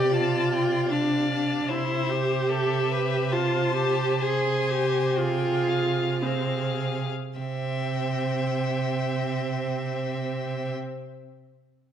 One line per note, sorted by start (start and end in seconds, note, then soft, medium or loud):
0.00 1.64 C3 soft
0.00 0.12 G4 medium
0.00 0.87 D5 soft
0.00 0.15 G5 soft
0.14 0.92 F4 medium
0.14 0.54 A5 soft
0.52 0.92 G5 soft
0.90 1.29 D4 soft
0.90 1.71 D5 soft
0.90 1.69 F5 soft
1.30 1.71 D4 soft
1.67 7.07 C3 soft
1.67 2.11 E4 soft
1.67 2.51 C5 soft
1.67 2.46 E5 soft
2.09 3.34 G4 medium
2.47 2.93 A4 soft
2.47 3.33 E5 soft
2.91 3.34 B4 soft
3.31 3.75 F4 medium
3.31 4.21 C5 soft
3.31 4.23 A5 soft
3.76 4.23 G4 medium
4.21 4.71 G#4 soft
4.21 5.19 C5 soft
4.21 5.17 G#5 soft
4.70 5.19 G4 medium
5.16 6.24 F4 medium
5.16 6.22 G#4 soft
5.16 5.70 G5 soft
5.68 6.22 F5 soft
6.22 6.80 C4 soft
6.22 7.09 G#4 soft
6.22 7.10 F5 soft
7.38 10.72 C3 soft
7.38 10.74 C4 soft
7.38 10.74 E5 soft
7.38 10.73 G5 soft